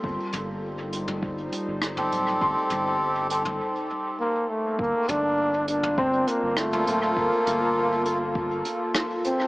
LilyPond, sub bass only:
\new Staff \with { instrumentName = "Sub bass" } { \clef bass \time 4/4 \key g \minor \tempo 4 = 101 g,,16 r16 g,,2 r16 g,,8. d,,8 | g,,16 r16 g,,4. r2 | g,,16 r16 g,,2 r16 g,,8. d,,8 | g,,16 r16 g,,2 r4. | }